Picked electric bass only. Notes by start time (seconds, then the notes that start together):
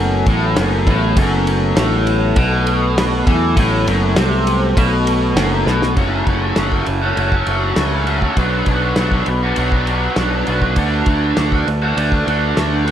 Already playing: F#1
0.27 A1
0.58 F#1
0.87 A1
1.17 F#1
1.77 A1
2.36 B1
3.27 E2
3.57 A1
3.87 F#1
4.17 C2
4.77 B1
5.36 F#1
5.66 B1
5.97 F#1
6.27 F#1
6.57 F#1
6.87 F#1
7.17 F#1
7.47 F#1
7.77 C#2
8.37 B1
8.67 B1
8.96 B1
9.27 B1
9.58 B1
10.17 B1
10.48 B1
10.77 D2
11.07 D2
11.38 D2
11.67 D2
11.97 D2
12.27 D2
12.57 D2